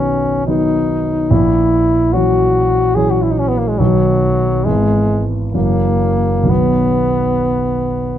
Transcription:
0.00 1.33 B1 soft
0.00 0.44 D#3 soft
0.00 0.44 F#3 soft
0.00 0.44 B3 soft
0.00 0.46 C#4 medium
0.47 1.27 D#3 soft
0.47 1.27 F#3 soft
0.47 1.28 B3 soft
0.47 1.32 D#4 medium
1.30 2.10 A#1 medium
1.30 2.14 E4 medium
2.13 2.92 E3 soft
2.13 2.92 F#3 soft
2.13 2.92 C#4 soft
2.13 2.97 F#4 medium
2.95 3.76 E3 soft
2.95 3.76 F#3 soft
2.95 3.76 C#4 soft
2.95 3.12 G#4 medium
3.10 3.24 F#4 medium
3.22 3.33 E4 soft
3.31 3.40 D#4 soft
3.39 3.49 C#4 medium
3.48 3.59 B3 soft
3.58 3.70 A#3 soft
3.68 3.80 G#3 soft
3.79 4.63 B1 soft
3.79 4.62 D#3 soft
3.79 4.66 F#3 medium
3.79 4.62 F#3 soft
3.79 4.63 B3 soft
4.65 5.52 G#1 soft
4.65 5.50 E3 soft
4.65 5.25 G#3 medium
4.65 5.51 B3 soft
5.54 6.46 F#1 soft
5.54 6.45 E3 soft
5.54 6.44 F#3 soft
5.54 6.51 A#3 medium
5.54 6.45 C#4 soft
6.43 8.18 B1 soft
6.43 8.18 D#3 soft
6.43 8.18 F#3 soft
6.43 8.18 B3 soft
6.49 8.18 B3 medium

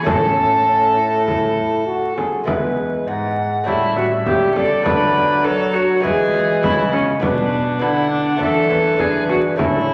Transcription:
0.03 2.28 A2 medium
0.03 2.24 A2 medium
0.03 2.43 A3 medium
0.03 2.43 C#4 medium
0.03 0.57 C#4 medium
0.03 2.44 E4 soft
0.03 2.24 A4 medium
0.03 1.88 A5 loud
0.03 frame drum medium
0.67 0.95 C#4 medium
0.97 1.86 E4 medium
1.28 frame drum medium
1.87 2.16 F#4 medium
2.16 2.47 G#4 medium
2.16 frame drum soft
2.44 3.61 G#3 soft
2.44 3.68 G#3 medium
2.44 3.62 B3 soft
2.44 3.63 E4 soft
2.44 frame drum medium
2.48 3.04 E2 soft
2.48 3.04 E2 medium
2.48 3.08 B4 medium
3.07 3.63 G#2 soft
3.07 3.66 G#2 medium
3.07 3.69 F#5 medium
3.64 4.28 A2 medium
3.64 4.23 A2 soft
3.64 4.85 G3 medium
3.64 4.80 A3 soft
3.64 4.81 C#4 soft
3.64 3.94 E4 soft
3.64 4.82 G4 soft
3.64 frame drum soft
3.68 4.56 E5 medium
3.96 4.05 F#4 medium
3.96 frame drum soft
4.26 4.85 C#3 medium
4.26 4.82 C#3 soft
4.26 4.55 G4 medium
4.26 frame drum medium
4.56 4.85 A4 medium
4.56 5.46 D5 medium
4.56 frame drum medium
4.82 6.05 F#3 medium
4.82 5.99 A3 soft
4.82 6.00 D4 soft
4.82 6.00 F#4 soft
4.82 frame drum medium
4.86 5.47 D3 medium
4.86 5.41 D3 soft
4.86 5.46 B4 medium
5.44 6.00 F#3 soft
5.44 6.05 F#3 medium
5.44 5.75 A4 medium
5.44 6.04 C#5 medium
5.74 6.03 F#4 medium
6.00 6.65 E3 medium
6.00 6.60 G#3 soft
6.00 7.22 G#3 medium
6.00 6.60 B3 soft
6.00 7.18 E4 soft
6.00 6.62 G#4 medium
6.04 6.59 E3 medium
6.04 6.91 B4 medium
6.04 frame drum soft
6.34 frame drum soft
6.63 7.18 C#3 soft
6.63 7.22 C#3 medium
6.63 6.92 E4 medium
6.63 frame drum medium
6.93 7.01 C#4 medium
6.93 frame drum soft
7.20 7.77 B2 medium
7.20 7.83 B2 medium
7.20 7.78 B3 soft
7.20 7.79 D4 soft
7.20 7.83 D4 medium
7.20 7.80 D4 medium
7.20 7.78 B4 medium
7.20 frame drum medium
7.79 8.40 D3 medium
7.79 8.37 D3 soft
7.79 8.36 B3 soft
7.79 8.24 D4 medium
7.79 8.38 D4 soft
7.79 8.10 E4 medium
7.79 8.39 F#5 medium
8.11 8.40 D4 medium
8.36 8.95 E3 soft
8.36 8.96 A3 soft
8.36 8.96 B3 soft
8.36 8.96 D4 soft
8.40 8.99 E3 medium
8.40 8.78 D4 medium
8.40 9.01 A4 medium
8.40 8.69 E5 medium
8.40 frame drum soft
8.70 9.58 B4 medium
8.70 frame drum soft
8.96 9.55 E3 soft
8.96 9.55 G#3 soft
8.96 9.56 D4 soft
8.96 9.61 D4 medium
8.96 9.57 E4 soft
8.96 9.29 G#4 medium
8.96 frame drum soft
9.00 9.61 E3 medium
9.29 9.38 F#4 medium
9.29 frame drum soft
9.56 9.94 A2 soft
9.56 9.94 A2 medium
9.56 9.94 A3 soft
9.56 9.94 C#4 soft
9.56 9.94 C#4 medium
9.56 9.94 E4 soft
9.56 9.94 A4 medium
9.56 frame drum medium
9.60 9.94 E4 medium

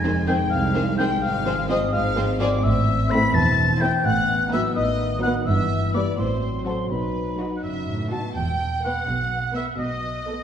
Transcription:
0.00 0.39 F1 medium
0.00 0.39 F2 medium
0.00 2.60 G#3 medium
0.00 1.19 D#4 medium
0.00 0.11 G#4 medium
0.00 0.24 G#5 medium
0.00 0.27 G#5 medium
0.00 0.27 G#6 medium
0.04 0.12 D#3 medium
0.04 0.12 C4 medium
0.04 0.12 C5 medium
0.27 0.35 D#3 medium
0.27 0.35 C4 medium
0.27 0.34 G#4 medium
0.27 0.34 C5 medium
0.27 0.49 G5 medium
0.27 0.51 G5 medium
0.27 0.33 G6 medium
0.50 1.10 C2 medium
0.50 0.95 F5 medium
0.50 0.99 F5 medium
0.50 0.97 F6 loud
0.74 0.82 D#3 medium
0.74 0.82 C4 medium
0.74 0.82 G#4 medium
0.74 0.83 C5 medium
0.98 1.05 D#3 medium
0.98 1.05 C4 medium
0.98 1.07 G#4 medium
0.98 1.07 C5 medium
0.98 1.20 G5 medium
0.98 1.22 G5 medium
0.98 1.04 G6 medium
1.22 1.81 G#1 medium
1.22 1.82 G#2 medium
1.22 3.88 C4 medium
1.22 1.66 F5 medium
1.22 1.69 F5 medium
1.22 1.68 F6 loud
1.45 1.53 F3 medium
1.45 1.53 C4 medium
1.45 1.54 G#4 medium
1.45 1.54 C5 medium
1.69 1.77 F3 medium
1.69 1.77 C4 medium
1.69 1.77 G#4 medium
1.69 1.77 C5 medium
1.69 1.91 D#5 medium
1.69 1.78 D#5 medium
1.69 1.92 D#6 loud
1.93 2.52 G#1 medium
1.93 2.53 G#2 medium
1.93 2.37 F5 medium
1.93 2.39 F5 medium
1.93 2.19 F6 loud
2.16 2.24 F3 medium
2.16 2.24 C4 medium
2.16 2.24 G#4 medium
2.16 2.24 C5 medium
2.40 2.48 F3 medium
2.40 2.48 C4 medium
2.40 2.48 G#4 medium
2.40 2.48 C5 medium
2.40 2.62 D5 medium
2.40 2.49 D5 medium
2.40 2.65 D6 medium
2.63 3.20 A1 medium
2.63 3.20 A2 medium
2.63 4.72 E3 medium
2.63 3.08 E5 medium
2.63 3.10 E5 medium
2.63 3.12 E6 loud
3.11 3.29 A3 medium
3.11 3.29 C4 medium
3.11 3.29 E4 medium
3.11 3.29 C5 medium
3.11 3.33 B5 loud
3.11 3.35 B5 medium
3.11 3.36 B6 loud
3.34 3.91 E1 medium
3.34 3.91 E2 medium
3.34 3.81 A5 medium
3.34 3.79 A5 medium
3.34 3.82 A6 loud
3.81 3.99 A3 medium
3.81 3.99 C4 medium
3.81 3.99 E4 medium
3.81 3.99 C5 medium
3.81 4.04 G5 medium
3.81 3.90 G5 medium
3.81 4.07 G6 loud
4.05 4.61 A1 medium
4.05 4.62 A2 medium
4.05 6.15 B3 medium
4.05 4.49 F#5 loud
4.05 4.52 F#5 loud
4.05 4.52 F#6 loud
4.52 4.70 F#3 medium
4.52 4.70 B3 medium
4.52 4.70 D#4 medium
4.52 4.70 B4 medium
4.52 4.60 E5 medium
4.52 4.74 E5 medium
4.52 4.75 E6 loud
4.75 5.33 A1 medium
4.75 5.33 A2 medium
4.75 5.47 D#3 medium
4.75 5.20 D#5 medium
4.75 5.23 D#5 medium
4.75 5.22 D#6 loud
5.22 5.41 F#3 medium
5.22 5.42 B3 medium
5.22 5.41 D#4 medium
5.22 5.41 B4 medium
5.22 5.45 F#5 medium
5.22 5.32 F#5 medium
5.22 5.28 F#6 loud
5.46 6.04 G1 medium
5.46 6.04 G2 medium
5.46 6.18 E3 medium
5.46 5.91 E5 medium
5.46 5.94 E5 medium
5.46 5.93 E6 medium
5.94 6.13 G3 medium
5.94 6.13 B3 medium
5.94 6.13 E4 medium
5.94 6.13 B4 medium
5.94 6.17 D5 medium
5.94 6.19 D5 medium
5.94 6.00 D6 medium
6.18 6.76 A1 medium
6.18 6.76 A2 medium
6.18 8.11 F#3 medium
6.18 6.91 C4 medium
6.18 6.66 C5 medium
6.18 6.64 C5 medium
6.18 6.65 C6 medium
6.66 6.85 F#3 medium
6.66 6.85 C4 medium
6.66 6.85 F#4 medium
6.66 6.85 A4 medium
6.66 6.89 C5 medium
6.66 6.75 C5 medium
6.66 6.90 C6 medium
6.90 7.49 B1 medium
6.90 7.49 B2 medium
6.90 8.12 D#4 soft
6.90 7.62 B4 medium
6.90 7.60 B4 medium
6.90 7.62 B5 medium
7.39 7.57 F#3 medium
7.39 7.57 D#4 medium
7.39 7.58 F#4 medium
7.57 7.65 F#5 soft
7.63 8.21 F#1 medium
7.63 7.86 F#2 medium
7.63 8.08 E5 medium
7.63 8.12 E5 medium
7.88 8.12 A2 medium
8.11 8.36 B2 soft
8.11 8.29 F#3 soft
8.11 8.30 D#4 medium
8.11 8.29 F#4 medium
8.11 8.35 A5 medium
8.11 8.23 A5 medium
8.36 8.93 E1 medium
8.36 8.93 E2 medium
8.36 8.83 G5 medium
8.83 9.02 B3 medium
8.83 9.02 B4 medium
8.83 9.01 E5 medium
8.83 9.54 F#5 medium
8.83 9.56 F#5 medium
9.08 9.64 B1 medium
9.08 9.64 B2 medium
9.55 9.73 B3 medium
9.55 9.73 B4 medium
9.55 9.63 E5 medium
9.55 9.73 E5 soft
9.55 9.66 E5 medium
9.79 10.36 B1 medium
9.79 10.36 B2 medium
9.79 10.43 D#5 medium
10.27 10.43 B3 soft
10.27 10.43 A4 medium
10.27 10.43 C5 medium

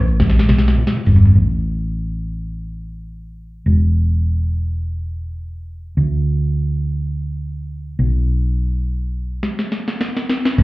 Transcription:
0.00 0.42 A1 medium
0.07 shaker medium
0.20 kick loud
0.20 snare medium
0.20 shaker medium
0.30 snare medium
0.36 snare medium
0.36 shaker soft
0.49 0.74 B1 medium
0.49 snare medium
0.58 snare medium
0.65 snare medium
0.65 shaker medium
0.77 mid tom loud
0.77 shaker medium
0.87 snare medium
0.93 mid tom loud
0.93 shaker medium
1.06 1.32 G1 medium
1.06 floor tom medium
1.06 open hi-hat medium
1.06 shaker medium
1.16 floor tom loud
1.22 floor tom loud
1.22 shaker medium
1.35 3.62 A1 medium
3.66 5.93 E1 medium
5.97 7.95 D2 medium
7.99 9.39 B1 medium
9.43 snare medium
9.59 snare medium
9.72 snare medium
9.88 snare medium
10.01 snare medium
10.17 snare medium
10.29 snare loud
10.45 snare medium
10.58 10.63 A1 loud
10.58 kick loud
10.58 crash loud
10.58 shaker medium

